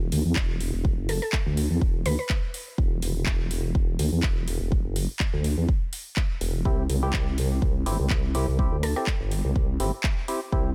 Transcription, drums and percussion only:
0, 0, Header, 1, 2, 480
1, 0, Start_track
1, 0, Tempo, 483871
1, 840, Time_signature, 4, 2, 24, 8
1, 10663, End_track
2, 0, Start_track
2, 0, Title_t, "Drums"
2, 120, Note_on_c, 9, 46, 99
2, 219, Note_off_c, 9, 46, 0
2, 354, Note_on_c, 9, 39, 123
2, 360, Note_on_c, 9, 36, 120
2, 453, Note_off_c, 9, 39, 0
2, 459, Note_off_c, 9, 36, 0
2, 600, Note_on_c, 9, 46, 90
2, 699, Note_off_c, 9, 46, 0
2, 840, Note_on_c, 9, 36, 120
2, 940, Note_off_c, 9, 36, 0
2, 1080, Note_on_c, 9, 46, 106
2, 1179, Note_off_c, 9, 46, 0
2, 1314, Note_on_c, 9, 39, 121
2, 1320, Note_on_c, 9, 36, 115
2, 1413, Note_off_c, 9, 39, 0
2, 1420, Note_off_c, 9, 36, 0
2, 1560, Note_on_c, 9, 46, 97
2, 1659, Note_off_c, 9, 46, 0
2, 1800, Note_on_c, 9, 36, 123
2, 1900, Note_off_c, 9, 36, 0
2, 2040, Note_on_c, 9, 46, 107
2, 2139, Note_off_c, 9, 46, 0
2, 2274, Note_on_c, 9, 39, 127
2, 2281, Note_on_c, 9, 36, 120
2, 2374, Note_off_c, 9, 39, 0
2, 2380, Note_off_c, 9, 36, 0
2, 2520, Note_on_c, 9, 46, 92
2, 2620, Note_off_c, 9, 46, 0
2, 2760, Note_on_c, 9, 36, 127
2, 2859, Note_off_c, 9, 36, 0
2, 3000, Note_on_c, 9, 46, 104
2, 3099, Note_off_c, 9, 46, 0
2, 3234, Note_on_c, 9, 39, 120
2, 3240, Note_on_c, 9, 36, 125
2, 3333, Note_off_c, 9, 39, 0
2, 3339, Note_off_c, 9, 36, 0
2, 3480, Note_on_c, 9, 46, 103
2, 3579, Note_off_c, 9, 46, 0
2, 3720, Note_on_c, 9, 36, 127
2, 3819, Note_off_c, 9, 36, 0
2, 3960, Note_on_c, 9, 46, 110
2, 4059, Note_off_c, 9, 46, 0
2, 4194, Note_on_c, 9, 39, 117
2, 4200, Note_on_c, 9, 36, 125
2, 4294, Note_off_c, 9, 39, 0
2, 4299, Note_off_c, 9, 36, 0
2, 4440, Note_on_c, 9, 46, 96
2, 4539, Note_off_c, 9, 46, 0
2, 4680, Note_on_c, 9, 36, 121
2, 4779, Note_off_c, 9, 36, 0
2, 4920, Note_on_c, 9, 46, 106
2, 5019, Note_off_c, 9, 46, 0
2, 5154, Note_on_c, 9, 39, 112
2, 5160, Note_on_c, 9, 36, 120
2, 5253, Note_off_c, 9, 39, 0
2, 5259, Note_off_c, 9, 36, 0
2, 5400, Note_on_c, 9, 46, 99
2, 5499, Note_off_c, 9, 46, 0
2, 5640, Note_on_c, 9, 36, 126
2, 5740, Note_off_c, 9, 36, 0
2, 5880, Note_on_c, 9, 46, 109
2, 5979, Note_off_c, 9, 46, 0
2, 6115, Note_on_c, 9, 39, 113
2, 6120, Note_on_c, 9, 36, 123
2, 6214, Note_off_c, 9, 39, 0
2, 6220, Note_off_c, 9, 36, 0
2, 6360, Note_on_c, 9, 46, 92
2, 6459, Note_off_c, 9, 46, 0
2, 6600, Note_on_c, 9, 36, 117
2, 6699, Note_off_c, 9, 36, 0
2, 6840, Note_on_c, 9, 46, 102
2, 6940, Note_off_c, 9, 46, 0
2, 7075, Note_on_c, 9, 39, 113
2, 7080, Note_on_c, 9, 36, 119
2, 7174, Note_off_c, 9, 39, 0
2, 7179, Note_off_c, 9, 36, 0
2, 7320, Note_on_c, 9, 46, 93
2, 7419, Note_off_c, 9, 46, 0
2, 7560, Note_on_c, 9, 36, 123
2, 7659, Note_off_c, 9, 36, 0
2, 7800, Note_on_c, 9, 46, 96
2, 7899, Note_off_c, 9, 46, 0
2, 8035, Note_on_c, 9, 39, 110
2, 8040, Note_on_c, 9, 36, 121
2, 8134, Note_off_c, 9, 39, 0
2, 8139, Note_off_c, 9, 36, 0
2, 8281, Note_on_c, 9, 46, 86
2, 8380, Note_off_c, 9, 46, 0
2, 8520, Note_on_c, 9, 36, 113
2, 8619, Note_off_c, 9, 36, 0
2, 8760, Note_on_c, 9, 46, 97
2, 8860, Note_off_c, 9, 46, 0
2, 8994, Note_on_c, 9, 39, 110
2, 9000, Note_on_c, 9, 36, 112
2, 9094, Note_off_c, 9, 39, 0
2, 9100, Note_off_c, 9, 36, 0
2, 9240, Note_on_c, 9, 46, 91
2, 9339, Note_off_c, 9, 46, 0
2, 9480, Note_on_c, 9, 36, 115
2, 9580, Note_off_c, 9, 36, 0
2, 9721, Note_on_c, 9, 46, 94
2, 9820, Note_off_c, 9, 46, 0
2, 9955, Note_on_c, 9, 39, 113
2, 9960, Note_on_c, 9, 36, 116
2, 10054, Note_off_c, 9, 39, 0
2, 10059, Note_off_c, 9, 36, 0
2, 10200, Note_on_c, 9, 46, 89
2, 10299, Note_off_c, 9, 46, 0
2, 10441, Note_on_c, 9, 36, 112
2, 10540, Note_off_c, 9, 36, 0
2, 10663, End_track
0, 0, End_of_file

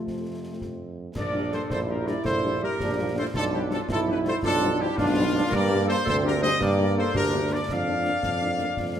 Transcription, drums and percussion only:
0, 0, Header, 1, 2, 480
1, 0, Start_track
1, 0, Tempo, 362538
1, 102, Time_signature, 6, 3, 24, 8
1, 11915, End_track
2, 0, Start_track
2, 0, Title_t, "Drums"
2, 97, Note_on_c, 9, 35, 41
2, 97, Note_on_c, 9, 38, 40
2, 230, Note_off_c, 9, 35, 0
2, 230, Note_off_c, 9, 38, 0
2, 813, Note_on_c, 9, 35, 48
2, 813, Note_on_c, 9, 38, 34
2, 946, Note_off_c, 9, 35, 0
2, 946, Note_off_c, 9, 38, 0
2, 1526, Note_on_c, 9, 35, 78
2, 1526, Note_on_c, 9, 38, 67
2, 1526, Note_on_c, 9, 49, 51
2, 1659, Note_off_c, 9, 35, 0
2, 1659, Note_off_c, 9, 38, 0
2, 1659, Note_off_c, 9, 49, 0
2, 2012, Note_on_c, 9, 38, 52
2, 2144, Note_off_c, 9, 38, 0
2, 2255, Note_on_c, 9, 35, 81
2, 2255, Note_on_c, 9, 38, 69
2, 2388, Note_off_c, 9, 35, 0
2, 2388, Note_off_c, 9, 38, 0
2, 2742, Note_on_c, 9, 38, 50
2, 2875, Note_off_c, 9, 38, 0
2, 2978, Note_on_c, 9, 35, 79
2, 2978, Note_on_c, 9, 38, 67
2, 3110, Note_off_c, 9, 35, 0
2, 3110, Note_off_c, 9, 38, 0
2, 3707, Note_on_c, 9, 35, 73
2, 3707, Note_on_c, 9, 38, 66
2, 3840, Note_off_c, 9, 35, 0
2, 3840, Note_off_c, 9, 38, 0
2, 4421, Note_on_c, 9, 35, 78
2, 4421, Note_on_c, 9, 38, 68
2, 4554, Note_off_c, 9, 35, 0
2, 4554, Note_off_c, 9, 38, 0
2, 4910, Note_on_c, 9, 38, 53
2, 5042, Note_off_c, 9, 38, 0
2, 5145, Note_on_c, 9, 35, 79
2, 5145, Note_on_c, 9, 38, 84
2, 5277, Note_off_c, 9, 35, 0
2, 5277, Note_off_c, 9, 38, 0
2, 5624, Note_on_c, 9, 38, 52
2, 5757, Note_off_c, 9, 38, 0
2, 5860, Note_on_c, 9, 35, 78
2, 5860, Note_on_c, 9, 38, 69
2, 5992, Note_off_c, 9, 35, 0
2, 5992, Note_off_c, 9, 38, 0
2, 6592, Note_on_c, 9, 35, 84
2, 6592, Note_on_c, 9, 38, 78
2, 6724, Note_off_c, 9, 35, 0
2, 6724, Note_off_c, 9, 38, 0
2, 7308, Note_on_c, 9, 35, 83
2, 7308, Note_on_c, 9, 38, 68
2, 7308, Note_on_c, 9, 49, 32
2, 7440, Note_off_c, 9, 35, 0
2, 7440, Note_off_c, 9, 38, 0
2, 7440, Note_off_c, 9, 49, 0
2, 7797, Note_on_c, 9, 38, 53
2, 7929, Note_off_c, 9, 38, 0
2, 8036, Note_on_c, 9, 35, 85
2, 8036, Note_on_c, 9, 38, 86
2, 8168, Note_off_c, 9, 35, 0
2, 8168, Note_off_c, 9, 38, 0
2, 8515, Note_on_c, 9, 38, 58
2, 8647, Note_off_c, 9, 38, 0
2, 8751, Note_on_c, 9, 35, 86
2, 8751, Note_on_c, 9, 38, 72
2, 8884, Note_off_c, 9, 35, 0
2, 8884, Note_off_c, 9, 38, 0
2, 9461, Note_on_c, 9, 35, 86
2, 9461, Note_on_c, 9, 38, 67
2, 9593, Note_off_c, 9, 35, 0
2, 9593, Note_off_c, 9, 38, 0
2, 10181, Note_on_c, 9, 35, 75
2, 10181, Note_on_c, 9, 38, 74
2, 10313, Note_off_c, 9, 35, 0
2, 10313, Note_off_c, 9, 38, 0
2, 10657, Note_on_c, 9, 38, 53
2, 10789, Note_off_c, 9, 38, 0
2, 10897, Note_on_c, 9, 35, 79
2, 10897, Note_on_c, 9, 38, 71
2, 11029, Note_off_c, 9, 35, 0
2, 11029, Note_off_c, 9, 38, 0
2, 11366, Note_on_c, 9, 38, 50
2, 11498, Note_off_c, 9, 38, 0
2, 11612, Note_on_c, 9, 35, 69
2, 11612, Note_on_c, 9, 38, 60
2, 11744, Note_off_c, 9, 35, 0
2, 11744, Note_off_c, 9, 38, 0
2, 11915, End_track
0, 0, End_of_file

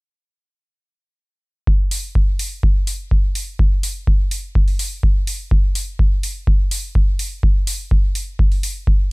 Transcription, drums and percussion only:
0, 0, Header, 1, 2, 480
1, 0, Start_track
1, 0, Tempo, 480000
1, 1673, Time_signature, 4, 2, 24, 8
1, 9121, End_track
2, 0, Start_track
2, 0, Title_t, "Drums"
2, 1673, Note_on_c, 9, 36, 115
2, 1773, Note_off_c, 9, 36, 0
2, 1913, Note_on_c, 9, 46, 75
2, 2013, Note_off_c, 9, 46, 0
2, 2153, Note_on_c, 9, 36, 95
2, 2253, Note_off_c, 9, 36, 0
2, 2394, Note_on_c, 9, 46, 70
2, 2494, Note_off_c, 9, 46, 0
2, 2633, Note_on_c, 9, 36, 115
2, 2733, Note_off_c, 9, 36, 0
2, 2872, Note_on_c, 9, 46, 74
2, 2972, Note_off_c, 9, 46, 0
2, 3113, Note_on_c, 9, 36, 97
2, 3213, Note_off_c, 9, 36, 0
2, 3353, Note_on_c, 9, 46, 67
2, 3453, Note_off_c, 9, 46, 0
2, 3594, Note_on_c, 9, 36, 120
2, 3694, Note_off_c, 9, 36, 0
2, 3834, Note_on_c, 9, 46, 81
2, 3934, Note_off_c, 9, 46, 0
2, 4074, Note_on_c, 9, 36, 105
2, 4174, Note_off_c, 9, 36, 0
2, 4313, Note_on_c, 9, 46, 69
2, 4413, Note_off_c, 9, 46, 0
2, 4554, Note_on_c, 9, 36, 117
2, 4654, Note_off_c, 9, 36, 0
2, 4676, Note_on_c, 9, 46, 32
2, 4776, Note_off_c, 9, 46, 0
2, 4793, Note_on_c, 9, 46, 78
2, 4893, Note_off_c, 9, 46, 0
2, 5033, Note_on_c, 9, 36, 100
2, 5133, Note_off_c, 9, 36, 0
2, 5274, Note_on_c, 9, 46, 68
2, 5374, Note_off_c, 9, 46, 0
2, 5513, Note_on_c, 9, 36, 122
2, 5613, Note_off_c, 9, 36, 0
2, 5753, Note_on_c, 9, 46, 83
2, 5853, Note_off_c, 9, 46, 0
2, 5993, Note_on_c, 9, 36, 103
2, 6093, Note_off_c, 9, 36, 0
2, 6234, Note_on_c, 9, 46, 71
2, 6334, Note_off_c, 9, 46, 0
2, 6473, Note_on_c, 9, 36, 121
2, 6573, Note_off_c, 9, 36, 0
2, 6713, Note_on_c, 9, 46, 81
2, 6813, Note_off_c, 9, 46, 0
2, 6953, Note_on_c, 9, 36, 104
2, 7053, Note_off_c, 9, 36, 0
2, 7193, Note_on_c, 9, 46, 69
2, 7293, Note_off_c, 9, 46, 0
2, 7432, Note_on_c, 9, 36, 116
2, 7532, Note_off_c, 9, 36, 0
2, 7672, Note_on_c, 9, 46, 84
2, 7772, Note_off_c, 9, 46, 0
2, 7913, Note_on_c, 9, 36, 104
2, 8013, Note_off_c, 9, 36, 0
2, 8152, Note_on_c, 9, 46, 71
2, 8252, Note_off_c, 9, 46, 0
2, 8393, Note_on_c, 9, 36, 116
2, 8493, Note_off_c, 9, 36, 0
2, 8516, Note_on_c, 9, 46, 32
2, 8616, Note_off_c, 9, 46, 0
2, 8633, Note_on_c, 9, 46, 80
2, 8733, Note_off_c, 9, 46, 0
2, 8873, Note_on_c, 9, 36, 106
2, 8973, Note_off_c, 9, 36, 0
2, 9121, End_track
0, 0, End_of_file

